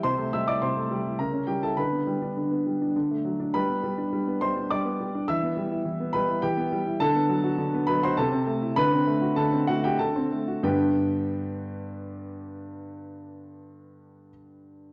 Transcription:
0.04 C3 C5 C6
0.18 A3
0.33 G3 E5 E6
0.47 E4 D5 D6
0.62 C3 C5 C6
0.76 A3
0.91 G3
1.05 E4
1.19 C#3 A#4 A#5
1.33 C#4
1.47 G3 G4 G5
1.62 E4 A4 A5
1.77 D3 B4 B5
1.92 B3
2.07 G3
2.22 D4
2.37 D3
2.51 B3
2.66 G3
2.82 D4
2.96 D3
3.11 A3
3.25 F#3
3.40 D4
3.54 G3 B4 B5
3.69 B3
3.83 G3
3.98 D4
4.12 G3
4.27 B3
4.41 G3 C5 C6
4.56 D4
4.71 G3 D5 D6
4.85 B3
5.00 G3
5.15 D4
5.28 E3 E5 E6
5.43 B3
5.57 G3
5.72 E4
5.85 E3
6.00 B3
6.13 G3 B4 B5
6.28 E4
6.42 E3 G4 G5
6.57 B3
6.72 G3
6.86 E4
7.00 D3 A4 A5
7.15 B3
7.29 F#3
7.44 F#4
7.58 D3
7.74 B3
7.87 F#3 B4 B5
8.03 F#4 C5 C6
8.17 C3 A4 A5
8.32 C4
8.47 A3
8.62 E4
8.76 D3 B4 B5
8.92 C4
9.07 A3
9.21 F#4
9.36 D3 A4 A5
9.52 C4
9.68 A3 F#4 F#5
9.83 F#4 G4 G5
9.99 D3 A4 A5
10.16 C4
10.32 A3
10.48 F#4
10.63 G2 D3 B3 D4 G4 B4 G5

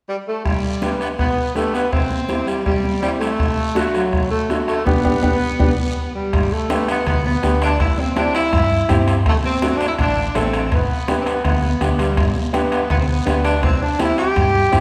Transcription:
0.09 G3
0.28 A3
0.45 G3, bombo low, bombo rim, high conga, long guiro
0.82 B3 D4 G4, bombo rim, high conga, short guiro
1.01 B3, bombo rim, short guiro
1.19 B3, bombo low, bombo rim, high conga, long guiro
1.55 A3 B3 D4 G4, bombo rim, high conga, short guiro
1.74 B3, bombo rim, short guiro
1.92 C4, bombo low, bombo rim, high conga, long guiro
2.11 high conga
2.29 C4 E4 G4, bombo rim, high conga, short guiro
2.47 G3, bombo rim, short guiro
2.66 G3, bombo low, bombo rim, high conga, long guiro
2.84 high conga
3.02 G3 C4 E4 G4, bombo rim, high conga, short guiro
3.20 A3, bombo rim, short guiro
3.39 bombo low, bombo rim, high conga, long guiro
3.75 A3 D4 F#4, bombo rim, high conga, short guiro
3.94 F#3, bombo rim, short guiro
4.13 bombo low, bombo rim, high conga, long guiro
4.30 A3
4.49 A3 D4 F#4, bombo rim, high conga, short guiro
4.68 A3, bombo rim, short guiro
4.85 B3 D4 G4, bombo low, high conga, long guiro
5.05 B3 D4 G4, bombo low, high conga, long guiro
5.22 B3 D4 G4, bombo low, high conga, long guiro
5.59 B3 D4 G4, bombo low, high conga, long guiro
6.15 G3
6.33 G1, bombo low, bombo rim, high conga, high timbale, long guiro
6.52 A3
6.69 B3 D4 G4, bombo rim, high conga, high timbale, short guiro
6.88 B3, bombo rim, high timbale, short guiro
7.06 D2 B3, bombo low, bombo rim, high conga, high timbale, long guiro
7.25 B3, high conga
7.43 D2 B3 D4 G4, bombo rim, high conga, high timbale, short guiro
7.62 D4, bombo rim, high timbale, short guiro
7.80 C2 E4, bombo low, bombo rim, high conga, high timbale, long guiro
7.98 C4, high conga
8.16 C4 D4 E4 G4, bombo rim, high conga, high timbale, short guiro
8.35 E4, bombo rim, high timbale, short guiro
8.53 G2, bombo low, bombo rim, high conga, high timbale, long guiro
8.89 G2 C4 E4 G4, bombo low, bombo rim, high conga, high timbale, short guiro
9.08 bombo rim, high timbale, short guiro
9.26 D2 A3, bombo low, bombo rim, high conga, high timbale, long guiro
9.44 C4, high conga
9.62 A3 D4 F#4, bombo rim, high conga, high timbale, short guiro
9.76 D4
9.81 bombo rim, high timbale, short guiro
9.88 E4
9.99 A1 D4, bombo low, bombo rim, high conga, high timbale, long guiro
10.35 A1 A3 C4 D4 A4, bombo rim, high conga, high timbale, low timbale, short guiro
10.53 bombo rim, high timbale, short guiro
10.72 G1 B3, bombo low, bombo rim, high conga, high timbale, long guiro
11.08 B3 D4 G4, bombo rim, high conga, high timbale, short guiro
11.21 C4
11.26 B3, bombo rim, high timbale, short guiro
11.44 D2 B3, bombo low, bombo rim, high conga, high timbale, long guiro
11.63 high conga
11.81 D2 B3 D4 G4, bombo low, bombo rim, high conga, high timbale, short guiro
11.99 G3, bombo rim, high timbale, short guiro
12.17 G1, bombo low, bombo rim, high conga, high timbale, long guiro
12.36 high conga
12.53 B3 D4 G4, bombo rim, high conga, high timbale, short guiro
12.72 B3, bombo rim, high timbale, short guiro
12.90 D2 B3, bombo low, bombo rim, high conga, high timbale, long guiro
13.00 C4
13.07 B3
13.25 D2 B3 D4 G4, bombo rim, high conga, high timbale, low timbale, short guiro
13.44 D4, bombo rim, high timbale, short guiro
13.63 C2 C4, bombo low, bombo rim, high conga, high timbale, long guiro
13.81 D4
13.99 C4 E4 G4, bombo rim, high conga, high timbale, short guiro
14.18 G4, bombo rim, high timbale, short guiro
14.36 G2, bombo low, bombo rim, high conga, high timbale, long guiro
14.72 G2 C4 E4 G4, bombo low, bombo rim, high conga, high timbale, short guiro

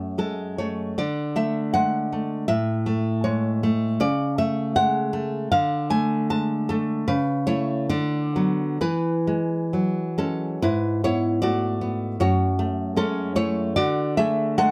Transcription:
Already playing: F#2 A3 C#5
0.18 G#3 A4
0.58 A3 C#5
0.98 D3 D5
1.36 A3 E5
1.74 G#3 F#5
2.13 A3
2.48 A2 E5
2.86 A3
3.24 G#3 C#5
3.63 A3
4.00 C#3 D5
4.38 A3 E5
4.76 G#3 F#5
5.13 A3
5.52 D3 F5
5.90 A3 G#5
6.30 G#3 A5
6.69 A3 A4
7.08 C#3 B4
7.47 A3 E4 C#5
7.89 D3 D5
8.36 F#3 B3
8.81 E3 B4
9.27 G#3
9.73 F#3
10.18 G#3 C#4 A4
10.62 G#2 E4 B4
11.04 B3 E4 C#5
11.42 A3 F#4 D5
11.81 B3
12.20 F#2 F#4 C#5
12.59 A3
12.96 G#3 C#4 A4
13.36 A3 E4 C#5
13.76 D3 F#4 D5
14.17 A3 G#4 E5
14.58 G#3 A4 F#5

